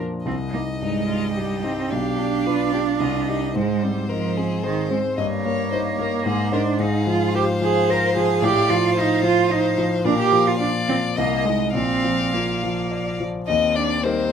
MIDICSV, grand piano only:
0, 0, Header, 1, 2, 480
1, 0, Start_track
1, 0, Tempo, 549954
1, 224, Time_signature, 3, 2, 24, 8
1, 3579, Tempo, 542005
1, 9339, Tempo, 568720
1, 12475, End_track
2, 0, Start_track
2, 0, Title_t, "Grand piano"
2, 0, Program_c, 0, 0
2, 0, Control_c, 0, 64, 127
2, 0, Note_on_c, 0, 46, 40
2, 0, Note_on_c, 0, 53, 31
2, 0, Note_on_c, 0, 62, 31
2, 0, Note_on_c, 0, 65, 33
2, 0, Note_on_c, 0, 70, 37
2, 194, Note_off_c, 0, 46, 0
2, 220, Note_on_c, 0, 36, 37
2, 227, Note_off_c, 0, 53, 0
2, 243, Control_c, 0, 64, 0
2, 249, Note_off_c, 0, 62, 0
2, 251, Note_off_c, 0, 65, 0
2, 251, Note_off_c, 0, 70, 0
2, 396, Control_c, 0, 64, 127
2, 472, Note_on_c, 0, 63, 31
2, 715, Note_on_c, 0, 43, 33
2, 851, Note_off_c, 0, 63, 0
2, 951, Note_on_c, 0, 63, 31
2, 1092, Note_off_c, 0, 43, 0
2, 1196, Note_on_c, 0, 67, 35
2, 1333, Note_off_c, 0, 63, 0
2, 1427, Note_on_c, 0, 63, 37
2, 1576, Note_off_c, 0, 67, 0
2, 1628, Note_off_c, 0, 36, 0
2, 1666, Note_off_c, 0, 63, 0
2, 1675, Note_on_c, 0, 35, 36
2, 1684, Control_c, 0, 64, 0
2, 1852, Control_c, 0, 64, 127
2, 1910, Note_on_c, 0, 62, 32
2, 2150, Note_on_c, 0, 65, 34
2, 2289, Note_off_c, 0, 62, 0
2, 2385, Note_on_c, 0, 62, 32
2, 2529, Note_off_c, 0, 65, 0
2, 2598, Note_off_c, 0, 35, 0
2, 2616, Note_on_c, 0, 36, 47
2, 2623, Note_off_c, 0, 62, 0
2, 2637, Control_c, 0, 64, 0
2, 2777, Control_c, 0, 64, 127
2, 2866, Note_on_c, 0, 63, 31
2, 2874, Note_on_c, 0, 67, 33
2, 3081, Note_off_c, 0, 63, 0
2, 3085, Note_off_c, 0, 36, 0
2, 3085, Note_off_c, 0, 67, 0
2, 3103, Note_on_c, 0, 44, 43
2, 3120, Control_c, 0, 64, 0
2, 3276, Control_c, 0, 64, 127
2, 3344, Note_on_c, 0, 60, 33
2, 3591, Note_on_c, 0, 63, 33
2, 3725, Note_off_c, 0, 60, 0
2, 3814, Note_on_c, 0, 60, 32
2, 3969, Note_off_c, 0, 63, 0
2, 4057, Note_on_c, 0, 68, 42
2, 4201, Note_off_c, 0, 60, 0
2, 4292, Note_on_c, 0, 60, 42
2, 4443, Note_off_c, 0, 68, 0
2, 4505, Note_off_c, 0, 44, 0
2, 4532, Note_on_c, 0, 43, 46
2, 4536, Note_off_c, 0, 60, 0
2, 4557, Control_c, 0, 64, 0
2, 4701, Control_c, 0, 64, 127
2, 4776, Note_on_c, 0, 58, 40
2, 5015, Note_on_c, 0, 63, 36
2, 5158, Note_off_c, 0, 58, 0
2, 5252, Note_on_c, 0, 58, 37
2, 5397, Note_off_c, 0, 63, 0
2, 5461, Note_off_c, 0, 43, 0
2, 5489, Note_on_c, 0, 44, 53
2, 5493, Note_off_c, 0, 58, 0
2, 5511, Control_c, 0, 64, 0
2, 5635, Control_c, 0, 64, 127
2, 5725, Note_on_c, 0, 63, 42
2, 5725, Note_on_c, 0, 72, 46
2, 5947, Note_off_c, 0, 63, 0
2, 5947, Note_off_c, 0, 72, 0
2, 5952, Note_off_c, 0, 44, 0
2, 5965, Note_on_c, 0, 44, 46
2, 5994, Control_c, 0, 64, 0
2, 6129, Control_c, 0, 64, 127
2, 6207, Note_on_c, 0, 53, 39
2, 6453, Note_on_c, 0, 65, 44
2, 6599, Note_off_c, 0, 53, 0
2, 6692, Note_on_c, 0, 53, 39
2, 6842, Note_off_c, 0, 65, 0
2, 6940, Note_on_c, 0, 72, 52
2, 7078, Note_off_c, 0, 53, 0
2, 7177, Note_on_c, 0, 53, 53
2, 7321, Note_off_c, 0, 72, 0
2, 7375, Note_off_c, 0, 44, 0
2, 7404, Note_on_c, 0, 45, 55
2, 7416, Note_off_c, 0, 53, 0
2, 7435, Control_c, 0, 64, 0
2, 7585, Control_c, 0, 64, 127
2, 7652, Note_on_c, 0, 53, 46
2, 7885, Note_on_c, 0, 65, 45
2, 8041, Note_off_c, 0, 53, 0
2, 8122, Note_on_c, 0, 53, 45
2, 8277, Note_off_c, 0, 65, 0
2, 8362, Note_on_c, 0, 72, 50
2, 8513, Note_off_c, 0, 53, 0
2, 8607, Note_on_c, 0, 53, 47
2, 8751, Note_off_c, 0, 72, 0
2, 8813, Note_off_c, 0, 45, 0
2, 8849, Note_on_c, 0, 46, 54
2, 8850, Note_off_c, 0, 53, 0
2, 8873, Control_c, 0, 64, 0
2, 9030, Control_c, 0, 64, 127
2, 9089, Note_on_c, 0, 53, 45
2, 9334, Note_on_c, 0, 65, 45
2, 9476, Note_off_c, 0, 53, 0
2, 9585, Note_on_c, 0, 53, 42
2, 9714, Note_off_c, 0, 65, 0
2, 9781, Note_off_c, 0, 46, 0
2, 9817, Note_off_c, 0, 53, 0
2, 9821, Note_on_c, 0, 36, 52
2, 9830, Control_c, 0, 64, 0
2, 9989, Control_c, 0, 64, 127
2, 10061, Note_on_c, 0, 63, 40
2, 10066, Note_on_c, 0, 75, 39
2, 10280, Note_off_c, 0, 63, 0
2, 10283, Note_off_c, 0, 75, 0
2, 10291, Note_off_c, 0, 36, 0
2, 10303, Note_on_c, 0, 34, 44
2, 10318, Control_c, 0, 64, 0
2, 10439, Control_c, 0, 64, 127
2, 10551, Note_on_c, 0, 53, 34
2, 10803, Note_on_c, 0, 65, 37
2, 10941, Note_off_c, 0, 53, 0
2, 11051, Note_on_c, 0, 53, 38
2, 11186, Note_off_c, 0, 65, 0
2, 11287, Note_on_c, 0, 74, 38
2, 11429, Note_off_c, 0, 53, 0
2, 11532, Note_on_c, 0, 53, 38
2, 11669, Note_off_c, 0, 74, 0
2, 11726, Note_off_c, 0, 34, 0
2, 11765, Note_off_c, 0, 53, 0
2, 11776, Control_c, 0, 64, 0
2, 11777, Note_on_c, 0, 39, 51
2, 11928, Control_c, 0, 64, 127
2, 12224, Note_off_c, 0, 39, 0
2, 12245, Note_on_c, 0, 55, 35
2, 12249, Note_on_c, 0, 63, 34
2, 12251, Note_on_c, 0, 70, 43
2, 12475, Note_off_c, 0, 55, 0
2, 12475, Note_off_c, 0, 63, 0
2, 12475, Note_off_c, 0, 70, 0
2, 12475, End_track
0, 0, End_of_file